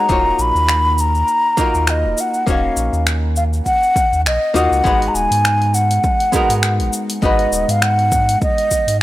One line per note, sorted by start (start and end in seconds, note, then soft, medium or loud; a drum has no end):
0.00 0.43 A#5 loud
0.09 0.34 D#1 medium
0.09 1.55 A#3 medium
0.09 1.55 D#4 medium
0.09 1.55 F4 medium
0.09 1.56 F#4 medium
0.09 1.56 C#5 medium
0.09 kick loud
0.09 cabasa soft
0.39 0.52 A#1 loud
0.39 1.02 B5 loud
0.39 cabasa medium
0.55 1.23 D#2 loud
0.55 cabasa soft
0.69 finger snap medium
0.69 cabasa soft
0.98 1.91 A#5 loud
0.98 cabasa medium
1.15 cabasa soft
1.28 cabasa soft
1.57 2.44 A#3 medium
1.57 2.44 D#4 medium
1.57 2.45 F4 medium
1.57 2.45 F#4 medium
1.57 2.46 A#4 loud
1.57 kick loud
1.57 cabasa medium
1.74 2.05 D#2 loud
1.74 cabasa soft
1.87 2.22 D#5 medium
1.87 finger snap medium
1.87 cabasa soft
2.04 2.14 D#1 loud
2.17 2.49 F#5 medium
2.17 cabasa medium
2.34 cabasa soft
2.46 2.71 D#1 loud
2.46 4.52 A#3 medium
2.46 4.53 C#4 medium
2.46 4.52 D#4 medium
2.46 4.53 F#4 medium
2.46 4.53 C#5 medium
2.46 3.04 F5 medium
2.46 kick loud
2.46 cabasa soft
2.76 2.90 A#1 medium
2.76 cabasa medium
2.93 3.61 D#2 loud
2.93 cabasa soft
3.07 finger snap medium
3.07 cabasa soft
3.36 3.44 F5 medium
3.36 cabasa medium
3.53 cabasa soft
3.66 4.21 F#5 loud
3.66 kick medium
3.66 cabasa soft
3.83 cabasa soft
3.96 kick loud
3.96 cabasa medium
4.12 4.27 D#2 loud
4.12 cabasa soft
4.25 4.38 A#1 medium
4.25 4.58 D#5 medium
4.25 finger snap medium
4.25 cabasa soft
4.54 4.68 D#2 medium
4.54 4.81 A#3 medium
4.54 4.82 D#4 medium
4.54 4.82 F4 medium
4.54 4.82 F#4 medium
4.54 4.82 D#5 medium
4.54 5.10 F#5 loud
4.54 cabasa medium
4.71 4.82 C#2 medium
4.71 cabasa soft
4.84 5.09 G#1 medium
4.84 6.30 G#3 medium
4.84 6.30 B3 medium
4.84 6.30 D#4 medium
4.84 6.31 F#4 medium
4.84 6.31 B4 medium
4.84 kick loud
4.84 cabasa soft
5.02 open hi-hat soft
5.08 5.16 A#5 medium
5.14 5.28 D#1 medium
5.14 5.76 G#5 loud
5.14 cabasa medium
5.31 5.99 G#2 loud
5.31 open hi-hat medium
5.31 cabasa soft
5.45 finger snap loud
5.45 cabasa soft
5.62 open hi-hat soft
5.74 6.93 F#5 loud
5.74 cabasa medium
5.91 open hi-hat medium
5.91 cabasa soft
6.04 kick loud
6.04 cabasa soft
6.20 open hi-hat soft
6.32 7.19 G#3 medium
6.32 7.19 B3 medium
6.32 7.20 D#4 medium
6.32 7.20 F#4 medium
6.32 7.21 A#4 loud
6.32 kick loud
6.32 cabasa medium
6.49 6.81 G#2 loud
6.49 open hi-hat medium
6.49 cabasa soft
6.63 finger snap loud
6.63 cabasa soft
6.79 6.90 G#1 medium
6.79 open hi-hat soft
6.93 cabasa medium
7.10 open hi-hat medium
7.10 cabasa soft
7.22 7.47 G#1 medium
7.22 9.03 G#3 medium
7.22 9.03 B3 medium
7.22 9.03 D#4 medium
7.22 9.03 F#4 medium
7.22 9.03 B4 medium
7.22 7.72 D#5 loud
7.22 kick loud
7.22 cabasa soft
7.39 open hi-hat soft
7.52 7.65 D#1 medium
7.52 cabasa medium
7.68 8.37 G#2 loud
7.68 7.84 F5 medium
7.68 open hi-hat medium
7.68 cabasa soft
7.82 8.42 F#5 medium
7.82 finger snap loud
7.82 cabasa soft
7.99 open hi-hat soft
8.12 kick loud
8.12 cabasa medium
8.29 open hi-hat medium
8.29 cabasa soft
8.41 8.97 D#5 loud
8.41 kick loud
8.41 cabasa soft
8.58 open hi-hat soft
8.71 kick medium
8.71 cabasa medium
8.87 9.03 G#2 medium
8.87 open hi-hat medium
8.87 cabasa soft